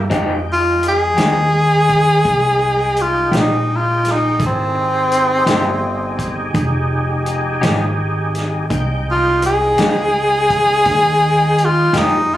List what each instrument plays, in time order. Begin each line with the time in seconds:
0.10 upright bass F2, clean electric guitar F3 G#3 D#4 G4, tonewheel organ G#3 D#4 G5, kick, closed hi-hat
0.52 tenor saxophone F4
0.83 closed hi-hat
0.88 tenor saxophone G#4
1.17 upright bass D#2, clean electric guitar F3 G#3 D#4 G4, snare, closed hi-hat
1.89 kick, closed hi-hat
2.25 upright bass C2, kick, closed hi-hat
2.97 closed hi-hat
3.02 tenor saxophone F4
3.32 upright bass A#1, clean electric guitar F3 G#3 D#4 G4, snare, closed hi-hat
3.39 tenor saxophone D#4
3.77 tenor saxophone F4
4.05 snare, closed hi-hat
4.11 tenor saxophone D#4
4.39 upright bass G#1, tonewheel organ E4 G#4 A4, kick, closed hi-hat
4.46 tenor saxophone C4
4.74 tonewheel organ D#4 G4 G#4
5.12 closed hi-hat
5.46 upright bass G1, clean electric guitar F3 G#3 D#4 G4, snare, closed hi-hat
6.19 kick, closed hi-hat
6.54 upright bass F1, kick, closed hi-hat
7.26 closed hi-hat
7.61 upright bass G#1, clean electric guitar F3 G#3 D#4 G4, snare, closed hi-hat
8.35 snare, closed hi-hat
8.70 upright bass C2, tonewheel organ G#3 D#4 G5, kick, closed hi-hat
9.11 tenor saxophone F4
9.42 closed hi-hat
9.46 tenor saxophone G#4
9.78 upright bass C#2, clean electric guitar F3 G#3 D#4 G4, snare, closed hi-hat
10.50 kick, closed hi-hat
10.85 upright bass D#2, kick, snare, closed hi-hat
11.58 closed hi-hat
11.65 tenor saxophone F4
11.93 upright bass F2, clean electric guitar F3 G#3 D#4 G4, snare, closed hi-hat
11.98 tenor saxophone D#4